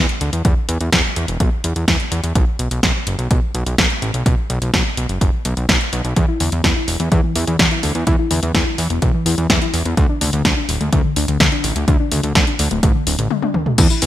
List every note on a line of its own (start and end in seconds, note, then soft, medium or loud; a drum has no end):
0.09 closed hi-hat soft
0.21 0.30 D2 loud
0.21 closed hi-hat medium
0.33 0.42 E2 medium
0.33 closed hi-hat medium
0.45 0.54 E2 loud
0.45 kick loud
0.45 closed hi-hat medium
0.69 0.78 E2 loud
0.69 closed hi-hat medium
0.81 0.90 E2 medium
0.81 closed hi-hat medium
0.93 1.02 E2 loud
0.93 kick loud
0.93 snare loud
0.93 closed hi-hat medium
1.16 1.26 E2 medium
1.16 closed hi-hat medium
1.28 1.38 E1 medium
1.28 closed hi-hat medium
1.40 1.50 B1 loud
1.40 kick loud
1.40 closed hi-hat medium
1.64 1.73 E2 medium
1.64 closed hi-hat medium
1.76 1.85 E2 medium
1.76 closed hi-hat medium
1.88 1.97 E2 loud
1.88 kick loud
1.88 snare loud
1.88 closed hi-hat medium
2.00 closed hi-hat soft
2.12 2.21 E2 loud
2.12 closed hi-hat medium
2.24 2.33 E2 medium
2.24 closed hi-hat medium
2.35 2.45 B1 loud
2.35 kick loud
2.35 closed hi-hat medium
2.59 2.69 B1 medium
2.59 closed hi-hat medium
2.71 2.81 B1 medium
2.71 closed hi-hat medium
2.83 2.92 B1 loud
2.83 kick loud
2.83 snare loud
2.83 closed hi-hat medium
3.07 3.16 F#1 medium
3.07 closed hi-hat medium
3.19 3.28 B1 medium
3.19 closed hi-hat medium
3.31 3.40 B1 loud
3.31 kick loud
3.31 closed hi-hat medium
3.55 3.64 B1 medium
3.55 closed hi-hat medium
3.66 3.76 B1 medium
3.66 closed hi-hat medium
3.78 3.88 B1 loud
3.78 kick loud
3.78 snare loud
3.78 closed hi-hat medium
3.90 closed hi-hat soft
4.02 4.11 A1 medium
4.02 closed hi-hat medium
4.14 4.23 B1 medium
4.14 closed hi-hat medium
4.26 4.35 B1 loud
4.26 kick loud
4.26 closed hi-hat medium
4.50 4.59 B1 loud
4.50 closed hi-hat medium
4.62 4.71 B1 medium
4.62 closed hi-hat soft
4.74 4.83 B1 loud
4.74 kick loud
4.74 snare loud
4.74 closed hi-hat medium
4.97 5.07 B1 medium
4.97 closed hi-hat medium
5.09 5.19 F#1 medium
5.09 closed hi-hat soft
5.21 5.31 F#1 loud
5.21 kick loud
5.21 closed hi-hat medium
5.45 5.54 B1 medium
5.45 closed hi-hat medium
5.57 5.66 B1 medium
5.57 closed hi-hat soft
5.69 5.78 B1 loud
5.69 kick loud
5.69 snare loud
5.69 closed hi-hat medium
5.81 closed hi-hat soft
5.93 6.02 B1 loud
5.93 closed hi-hat medium
6.05 6.14 B1 medium
6.05 closed hi-hat soft
6.16 6.26 E2 loud
6.16 6.26 E3 medium
6.16 kick loud
6.16 closed hi-hat medium
6.28 6.40 E4 loud
6.40 6.50 E2 medium
6.40 6.52 D3 medium
6.40 open hi-hat medium
6.52 6.62 E2 medium
6.52 6.64 E3 medium
6.52 closed hi-hat soft
6.64 6.73 E2 loud
6.64 6.70 E4 loud
6.64 kick loud
6.64 snare loud
6.64 closed hi-hat medium
6.76 6.86 E4 medium
6.88 6.97 E1 medium
6.88 6.97 E2 medium
6.88 open hi-hat loud
7.00 7.09 E2 medium
7.00 7.05 B3 medium
7.00 closed hi-hat soft
7.12 7.21 E2 loud
7.12 7.21 E3 medium
7.12 kick loud
7.12 closed hi-hat medium
7.24 7.33 E3 loud
7.36 7.45 E2 medium
7.36 7.41 E4 medium
7.36 open hi-hat loud
7.47 7.57 E2 medium
7.47 7.58 E3 medium
7.47 closed hi-hat soft
7.59 7.69 E2 loud
7.59 7.69 E3 loud
7.59 kick loud
7.59 snare loud
7.59 closed hi-hat medium
7.71 7.81 E4 loud
7.71 closed hi-hat soft
7.83 7.92 D2 medium
7.83 7.93 E2 medium
7.83 open hi-hat medium
7.95 8.04 E2 medium
7.95 8.01 B3 medium
7.95 closed hi-hat medium
8.07 8.16 E2 loud
8.07 8.16 E3 medium
8.07 kick loud
8.07 closed hi-hat medium
8.19 8.30 E4 loud
8.31 8.40 E2 medium
8.31 8.42 D3 medium
8.31 open hi-hat loud
8.43 8.52 E2 medium
8.43 closed hi-hat soft
8.55 8.64 E2 loud
8.55 8.60 E4 loud
8.55 kick medium
8.55 snare loud
8.55 closed hi-hat medium
8.67 8.76 E4 medium
8.78 8.88 E2 medium
8.78 open hi-hat loud
8.90 9.00 E1 medium
8.90 8.96 B3 medium
8.90 closed hi-hat soft
9.02 9.11 B1 medium
9.02 9.12 E3 medium
9.02 kick loud
9.02 closed hi-hat medium
9.14 9.24 E3 loud
9.26 9.35 E2 medium
9.26 9.32 E4 medium
9.26 open hi-hat loud
9.38 9.47 E2 medium
9.38 9.49 E3 medium
9.38 closed hi-hat soft
9.50 9.59 E2 loud
9.50 9.59 E3 loud
9.50 kick medium
9.50 snare loud
9.50 closed hi-hat medium
9.62 9.71 E4 loud
9.62 closed hi-hat soft
9.74 9.83 E2 medium
9.74 open hi-hat loud
9.85 9.95 E2 medium
9.85 9.91 B3 medium
9.85 closed hi-hat soft
9.97 10.07 D2 loud
9.97 10.07 D3 medium
9.97 kick loud
9.97 closed hi-hat medium
10.09 10.21 D4 loud
10.21 10.31 D2 medium
10.21 10.32 C#3 medium
10.21 open hi-hat loud
10.33 10.42 D2 medium
10.33 10.44 D3 medium
10.33 closed hi-hat soft
10.45 10.54 D2 loud
10.45 10.51 D4 loud
10.45 kick medium
10.45 snare loud
10.45 closed hi-hat medium
10.57 10.66 D4 medium
10.69 10.78 D1 medium
10.69 10.78 D2 medium
10.69 open hi-hat loud
10.81 10.90 D2 medium
10.81 10.86 A3 medium
10.81 closed hi-hat soft
10.93 11.02 D2 loud
10.93 11.02 D3 medium
10.93 kick loud
10.93 closed hi-hat medium
11.04 11.14 D3 loud
11.16 11.26 D2 medium
11.16 11.22 D4 medium
11.16 open hi-hat loud
11.28 11.38 D2 medium
11.28 11.39 D3 medium
11.28 closed hi-hat medium
11.40 11.50 D2 loud
11.40 11.50 D3 loud
11.40 kick medium
11.40 snare loud
11.40 closed hi-hat medium
11.52 11.62 D4 loud
11.52 closed hi-hat soft
11.64 11.73 A1 medium
11.64 11.73 D2 medium
11.64 open hi-hat loud
11.76 11.85 D2 medium
11.76 11.82 A3 medium
11.76 closed hi-hat medium
11.88 11.97 D2 loud
11.88 11.97 D3 medium
11.88 kick loud
11.88 closed hi-hat medium
12.00 12.11 D4 loud
12.12 12.21 D2 loud
12.12 12.23 C#3 medium
12.12 open hi-hat loud
12.23 12.33 D2 medium
12.23 12.35 D3 medium
12.23 closed hi-hat medium
12.35 12.45 D2 loud
12.35 12.41 D4 loud
12.35 kick medium
12.35 snare loud
12.35 closed hi-hat medium
12.47 12.57 D4 medium
12.47 closed hi-hat soft
12.59 12.69 D2 medium
12.59 open hi-hat loud
12.71 12.81 D1 medium
12.71 12.77 A3 medium
12.71 closed hi-hat medium
12.83 12.92 A1 loud
12.83 12.93 D3 medium
12.83 kick loud
12.83 closed hi-hat medium
12.95 13.04 D3 loud
13.07 13.16 D1 medium
13.07 13.13 D4 medium
13.07 open hi-hat loud
13.19 13.28 A1 medium
13.19 13.29 D3 medium
13.19 closed hi-hat medium
13.31 13.40 D3 loud
13.31 high tom medium
13.42 13.52 D4 loud
13.42 high tom medium
13.54 13.64 D2 medium
13.54 mid tom medium
13.66 13.72 A3 medium
13.66 mid tom medium
13.78 13.88 E2 loud
13.78 13.88 E3 medium
13.78 kick loud
13.78 closed hi-hat medium
13.78 crash loud
13.78 tambourine soft
13.90 14.02 E4 loud
13.90 tambourine soft
14.02 14.06 E2 medium
14.02 14.06 D3 medium
14.02 open hi-hat loud